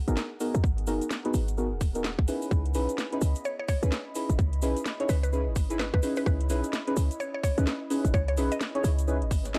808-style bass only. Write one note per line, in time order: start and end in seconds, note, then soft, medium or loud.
0.08 0.16 G#1 medium
0.55 0.63 D#2 medium
0.64 0.89 G#1 medium
0.87 1.00 F#1 medium
1.34 1.73 G#1 medium
1.72 2.16 D#1 loud
2.19 2.27 G#1 medium
2.51 2.76 C#2 medium
2.75 2.88 B1 medium
3.21 3.34 C#2 medium
3.83 3.91 C#2 loud
4.30 4.38 G#1 medium
4.39 4.64 C#2 medium
4.62 4.75 B1 medium
5.09 5.48 C#2 medium
5.47 5.91 G#1 loud
5.94 6.02 C#2 medium
6.26 6.51 C#2 loud
6.50 6.63 B1 medium
6.97 7.09 C#2 medium
7.58 7.66 C#2 loud
8.05 8.13 G#1 loud
8.14 8.39 C#2 loud
8.37 8.50 B1 medium
8.84 9.23 C#2 medium
9.22 9.59 G#1 loud